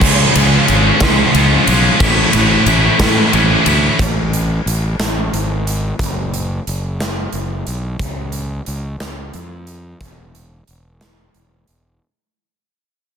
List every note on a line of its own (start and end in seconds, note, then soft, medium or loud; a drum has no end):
0.01 0.23 C#2 loud
0.01 0.67 C#3 loud
0.01 0.67 F3 loud
0.01 0.37 G#3 loud
0.01 0.36 C#4 loud
0.01 0.34 F4 loud
0.01 kick loud
0.01 crash loud
0.35 0.57 C#2 medium
0.35 1.02 G#3 medium
0.35 1.03 C#4 medium
0.35 1.01 F4 medium
0.35 ride medium
0.68 0.90 G#1 loud
0.68 ride medium
1.00 1.23 C#2 medium
1.00 1.68 C#3 medium
1.00 1.33 F3 medium
1.00 1.34 G#3 medium
1.00 1.34 C#4 medium
1.00 1.35 F4 medium
1.00 kick medium
1.00 snare loud
1.00 ride loud
1.34 1.56 C#2 medium
1.34 1.98 F3 medium
1.34 1.68 G#3 medium
1.34 1.68 C#4 medium
1.34 1.66 F4 loud
1.34 ride medium
1.67 1.89 B1 medium
1.67 1.99 G#3 medium
1.67 2.02 C#4 medium
1.67 1.98 F4 medium
1.67 ride medium
2.00 2.22 A1 loud
2.00 2.66 A2 loud
2.00 2.67 E3 medium
2.00 2.35 A3 loud
2.00 2.34 C#4 loud
2.00 2.33 E4 loud
2.00 kick loud
2.00 ride loud
2.33 2.55 A1 loud
2.33 2.99 A3 medium
2.33 2.99 C#4 medium
2.33 2.98 E4 medium
2.33 ride medium
2.66 2.88 A1 loud
2.66 ride medium
2.99 3.21 A2 medium
2.99 3.67 A2 medium
2.99 3.32 E3 medium
2.99 3.32 A3 medium
2.99 3.33 C#4 medium
2.99 3.34 E4 medium
2.99 kick medium
2.99 snare loud
2.99 ride loud
3.33 3.55 A1 medium
3.33 3.97 E3 medium
3.33 3.68 A3 medium
3.33 3.66 C#4 medium
3.33 3.66 E4 medium
3.33 ride medium
3.66 3.88 D2 medium
3.66 3.98 A3 medium
3.66 3.98 C#4 medium
3.66 3.98 E4 medium
3.66 ride medium
3.99 4.58 A1 medium
3.99 kick loud
3.99 closed hi-hat medium
4.33 closed hi-hat medium
4.66 4.95 A1 medium
4.66 closed hi-hat medium
4.99 5.28 A1 medium
4.99 snare loud
4.99 closed hi-hat medium
5.33 5.91 G#1 medium
5.33 closed hi-hat medium
5.67 closed hi-hat medium
5.99 6.58 F#1 medium
5.99 kick loud
5.99 closed hi-hat medium
6.34 closed hi-hat medium
6.67 7.25 F#1 medium
6.67 closed hi-hat medium
7.00 snare loud
7.00 closed hi-hat medium
7.32 7.62 F#1 medium
7.32 closed hi-hat medium
7.67 7.96 B1 medium
7.67 closed hi-hat medium
7.99 8.59 C#2 medium
7.99 kick loud
7.99 closed hi-hat medium
8.32 closed hi-hat medium
8.66 8.96 C#2 medium
8.66 closed hi-hat medium
9.00 9.30 C#2 medium
9.00 snare loud
9.00 closed hi-hat medium
9.34 9.93 F2 medium
9.34 closed hi-hat soft
9.67 closed hi-hat medium
10.01 10.60 E1 medium
10.01 kick medium
10.01 closed hi-hat medium
10.35 closed hi-hat medium
10.67 11.27 E1 medium
10.67 closed hi-hat medium
11.01 snare loud
11.01 closed hi-hat medium
11.34 11.64 E1 medium
11.34 closed hi-hat medium
11.67 11.98 E1 medium
11.67 closed hi-hat medium